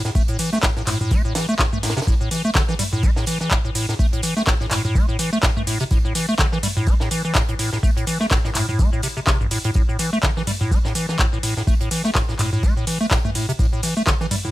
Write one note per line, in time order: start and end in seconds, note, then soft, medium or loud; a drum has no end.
0.05 0.10 A2 medium
0.05 snare medium
0.05 shaker soft
0.15 0.23 A3 medium
0.15 kick loud
0.15 tambourine medium
0.15 shaker soft
0.28 0.37 A2 medium
0.28 closed hi-hat soft
0.28 shaker soft
0.39 0.50 E3 medium
0.39 open hi-hat loud
0.39 ride medium
0.39 tambourine medium
0.39 shaker medium
0.53 0.58 A3 loud
0.53 snare medium
0.53 shaker soft
0.63 0.71 A2 medium
0.63 kick loud
0.63 snare loud
0.63 clap loud
0.63 tambourine medium
0.63 shaker soft
0.77 0.82 A2 medium
0.77 snare medium
0.77 shaker soft
0.86 0.98 A2 medium
0.86 clap medium
0.86 mid tom loud
0.86 open hi-hat loud
0.86 ride medium
0.86 tambourine medium
0.86 shaker medium
1.01 1.13 A2 medium
1.01 mid tom medium
1.01 shaker soft
1.11 1.22 A3 medium
1.11 kick loud
1.11 tambourine medium
1.11 shaker soft
1.25 1.33 A2 medium
1.25 shaker soft
1.35 1.46 E3 medium
1.35 snare loud
1.35 open hi-hat loud
1.35 ride medium
1.35 tambourine medium
1.35 shaker medium
1.49 1.54 A3 loud
1.49 shaker soft
1.59 1.67 A2 medium
1.59 kick loud
1.59 snare loud
1.59 clap loud
1.59 tambourine medium
1.59 shaker soft
1.73 1.78 A3 medium
1.73 mid tom loud
1.73 shaker soft
1.83 1.94 A2 medium
1.83 snare medium
1.83 open hi-hat loud
1.83 ride medium
1.83 tambourine medium
1.83 shaker medium
1.90 snare loud
1.90 tambourine medium
1.97 2.00 C3 loud
1.97 snare medium
1.97 tambourine medium
1.97 shaker soft
2.02 snare loud
2.02 tambourine medium
2.07 2.15 A2 medium
2.07 kick loud
2.07 shaker soft
2.21 2.29 A2 medium
2.21 shaker soft
2.31 2.42 E3 medium
2.31 open hi-hat loud
2.31 ride medium
2.31 tambourine medium
2.31 shaker medium
2.45 2.50 A3 loud
2.45 shaker soft
2.55 2.63 D3 loud
2.55 kick loud
2.55 snare loud
2.55 clap loud
2.55 tambourine medium
2.55 shaker soft
2.69 2.74 E3 loud
2.69 snare soft
2.69 shaker soft
2.79 2.84 G3 medium
2.79 mid tom medium
2.79 open hi-hat loud
2.79 ride medium
2.79 tambourine medium
2.79 shaker medium
2.93 3.05 A2 medium
2.93 mid tom medium
2.93 shaker soft
3.03 3.11 A3 medium
3.03 kick loud
3.03 tambourine loud
3.03 shaker soft
3.16 3.25 A2 medium
3.16 snare medium
3.16 shaker soft
3.26 3.38 E3 medium
3.26 open hi-hat loud
3.26 ride medium
3.26 tambourine medium
3.26 shaker medium
3.40 3.49 E3 medium
3.40 snare soft
3.40 shaker soft
3.51 3.59 A2 medium
3.51 kick loud
3.51 clap loud
3.51 tambourine medium
3.51 shaker soft
3.65 3.70 A2 medium
3.65 shaker soft
3.75 3.86 A2 medium
3.75 open hi-hat loud
3.75 ride medium
3.75 tambourine medium
3.75 shaker medium
3.89 3.94 A2 medium
3.89 snare medium
3.89 shaker soft
3.99 4.07 A3 medium
3.99 kick loud
3.99 tambourine medium
3.99 shaker soft
4.13 4.21 A2 medium
4.13 closed hi-hat soft
4.13 shaker soft
4.22 4.34 E3 medium
4.22 open hi-hat loud
4.22 ride medium
4.22 tambourine medium
4.22 shaker medium
4.37 4.42 A3 loud
4.37 snare soft
4.37 shaker soft
4.47 4.55 A2 medium
4.47 kick loud
4.47 snare loud
4.47 clap loud
4.47 tambourine medium
4.47 shaker soft
4.60 4.66 A2 medium
4.60 snare medium
4.60 shaker soft
4.71 4.82 A2 medium
4.71 clap medium
4.71 mid tom medium
4.71 open hi-hat loud
4.71 ride medium
4.71 tambourine medium
4.71 shaker medium
4.85 4.97 A2 medium
4.85 mid tom medium
4.85 shaker soft
4.95 5.06 A3 medium
4.95 kick loud
4.95 tambourine medium
4.95 shaker soft
5.09 5.17 A2 medium
5.09 shaker soft
5.19 5.30 E3 medium
5.19 open hi-hat loud
5.19 ride medium
5.19 tambourine medium
5.19 shaker medium
5.33 5.38 A3 loud
5.33 shaker soft
5.43 5.51 A2 medium
5.43 kick loud
5.43 snare loud
5.43 clap loud
5.43 tambourine loud
5.43 shaker soft
5.57 5.62 A3 medium
5.57 mid tom medium
5.57 shaker soft
5.67 5.78 A2 medium
5.67 open hi-hat loud
5.67 ride medium
5.67 tambourine medium
5.67 shaker medium
5.80 5.84 C3 loud
5.80 closed hi-hat soft
5.80 shaker soft
5.91 5.99 A2 medium
5.91 kick loud
5.91 tambourine loud
5.91 shaker soft
6.05 6.13 A2 medium
6.05 shaker soft
6.15 6.26 E3 medium
6.15 open hi-hat loud
6.15 ride medium
6.15 tambourine medium
6.15 shaker medium
6.29 6.34 A3 loud
6.29 shaker soft
6.38 6.47 D3 loud
6.38 kick loud
6.38 snare loud
6.38 clap loud
6.38 tambourine medium
6.38 shaker soft
6.52 6.58 E3 loud
6.52 snare soft
6.52 shaker soft
6.63 6.68 G3 medium
6.63 mid tom medium
6.63 open hi-hat loud
6.63 ride medium
6.63 tambourine medium
6.63 shaker medium
6.77 6.89 A2 medium
6.77 mid tom loud
6.77 shaker soft
6.87 6.95 A3 medium
6.87 kick loud
6.87 tambourine medium
6.87 shaker soft
7.00 7.09 A2 medium
7.00 snare medium
7.00 shaker soft
7.11 7.22 E3 medium
7.11 open hi-hat loud
7.11 ride medium
7.11 tambourine medium
7.11 shaker medium
7.25 7.33 E3 medium
7.25 shaker soft
7.34 7.43 A2 medium
7.34 kick loud
7.34 snare loud
7.34 clap loud
7.34 tambourine loud
7.34 shaker soft
7.49 7.54 A2 medium
7.49 closed hi-hat soft
7.49 shaker soft
7.59 7.70 A2 medium
7.59 open hi-hat loud
7.59 ride medium
7.59 tambourine medium
7.59 shaker medium
7.73 7.78 A2 medium
7.73 snare medium
7.73 shaker soft
7.83 7.91 A3 medium
7.83 kick loud
7.83 tambourine medium
7.83 shaker soft
7.97 8.05 A2 medium
7.97 closed hi-hat soft
7.97 shaker soft
8.07 8.18 E3 medium
8.07 open hi-hat loud
8.07 ride medium
8.07 tambourine medium
8.07 shaker medium
8.20 8.26 A3 loud
8.20 snare soft
8.20 shaker soft
8.31 8.39 A2 medium
8.31 kick loud
8.31 snare loud
8.31 clap loud
8.31 tambourine medium
8.31 shaker soft
8.45 8.50 A2 medium
8.45 snare medium
8.45 shaker soft
8.55 8.66 A2 medium
8.55 clap medium
8.55 mid tom loud
8.55 open hi-hat loud
8.55 ride medium
8.55 tambourine medium
8.55 shaker medium
8.69 8.81 A2 medium
8.69 mid tom medium
8.69 shaker soft
8.79 8.90 A3 medium
8.79 kick loud
8.79 tambourine medium
8.79 shaker soft
8.93 9.01 A2 medium
8.93 shaker soft
9.02 9.08 C3 medium
9.02 open hi-hat loud
9.02 ride medium
9.02 tambourine medium
9.02 shaker medium
9.17 9.20 C3 medium
9.17 shaker soft
9.27 9.38 C3 medium
9.27 kick loud
9.27 snare loud
9.27 clap loud
9.27 tambourine medium
9.27 shaker soft
9.41 9.47 A1 medium
9.41 mid tom loud
9.41 shaker soft
9.51 9.59 A2 medium
9.51 open hi-hat loud
9.51 ride medium
9.51 tambourine medium
9.51 shaker medium
9.64 9.70 A2 loud
9.64 closed hi-hat soft
9.64 shaker soft
9.74 9.83 A2 medium
9.74 kick loud
9.74 tambourine medium
9.74 shaker soft
9.89 9.97 A2 medium
9.89 shaker soft
9.99 10.10 E3 medium
9.99 open hi-hat loud
9.99 ride medium
9.99 tambourine medium
9.99 shaker medium
10.13 10.19 A3 loud
10.13 shaker soft
10.23 10.31 D3 loud
10.23 kick loud
10.23 snare loud
10.23 clap loud
10.23 tambourine medium
10.23 shaker soft
10.37 10.42 E3 loud
10.37 snare soft
10.37 shaker soft
10.47 10.52 G3 medium
10.47 mid tom loud
10.47 open hi-hat loud
10.47 ride medium
10.47 tambourine medium
10.47 shaker medium
10.61 10.73 A2 medium
10.61 mid tom loud
10.61 shaker soft
10.71 10.79 A3 medium
10.71 kick loud
10.71 tambourine medium
10.71 shaker soft
10.85 10.93 A2 medium
10.85 snare medium
10.85 shaker soft
10.95 11.06 E3 medium
10.95 open hi-hat loud
10.95 ride medium
10.95 tambourine medium
10.95 shaker medium
11.09 11.17 E3 medium
11.09 snare medium
11.09 shaker soft
11.19 11.27 A2 medium
11.19 kick loud
11.19 clap loud
11.19 tambourine medium
11.19 shaker soft
11.33 11.38 A2 medium
11.33 shaker soft
11.43 11.54 A2 medium
11.43 open hi-hat loud
11.43 ride medium
11.43 tambourine medium
11.43 shaker medium
11.57 11.62 A2 medium
11.57 snare soft
11.57 shaker soft
11.67 11.75 A3 medium
11.67 kick loud
11.67 tambourine medium
11.67 shaker soft
11.81 11.89 A2 medium
11.81 closed hi-hat soft
11.81 shaker soft
11.91 12.02 E3 medium
11.91 open hi-hat loud
11.91 ride medium
11.91 tambourine medium
11.91 shaker medium
12.04 12.10 A3 loud
12.04 snare soft
12.04 shaker soft
12.15 12.23 A2 medium
12.15 kick loud
12.15 snare loud
12.15 clap loud
12.15 tambourine medium
12.15 shaker soft
12.29 12.34 A2 medium
12.29 snare soft
12.29 shaker soft
12.39 12.50 A2 medium
12.39 clap medium
12.39 mid tom loud
12.39 open hi-hat loud
12.39 ride medium
12.39 tambourine medium
12.39 shaker medium
12.53 12.65 A2 medium
12.53 mid tom loud
12.53 shaker soft
12.63 12.74 A3 medium
12.63 kick loud
12.63 tambourine medium
12.63 shaker soft
12.77 12.85 A2 medium
12.77 shaker soft
12.87 12.98 E3 medium
12.87 open hi-hat loud
12.87 ride medium
12.87 tambourine medium
12.87 shaker medium
13.01 13.06 A3 loud
13.01 shaker soft
13.11 13.19 A2 medium
13.11 kick loud
13.11 snare loud
13.11 clap loud
13.11 tambourine loud
13.11 shaker soft
13.25 13.30 A3 medium
13.25 mid tom loud
13.25 shaker soft
13.35 13.46 A2 medium
13.35 open hi-hat loud
13.35 ride medium
13.35 tambourine medium
13.35 shaker medium
13.49 13.52 C3 loud
13.49 closed hi-hat soft
13.49 shaker soft
13.59 13.67 A2 medium
13.59 kick loud
13.59 tambourine loud
13.59 shaker soft
13.73 13.81 A2 medium
13.73 shaker soft
13.83 13.94 E3 medium
13.83 open hi-hat loud
13.83 ride medium
13.83 tambourine medium
13.83 shaker medium
13.97 14.02 A3 loud
13.97 shaker soft
14.06 14.15 D3 loud
14.06 kick loud
14.06 snare loud
14.06 clap loud
14.06 tambourine medium
14.06 shaker soft
14.21 14.26 E3 loud
14.21 snare soft
14.21 shaker soft
14.31 14.36 G3 medium
14.31 mid tom loud
14.31 open hi-hat loud
14.31 ride medium
14.31 tambourine medium
14.31 shaker medium
14.45 14.51 A2 medium
14.45 mid tom loud
14.45 shaker soft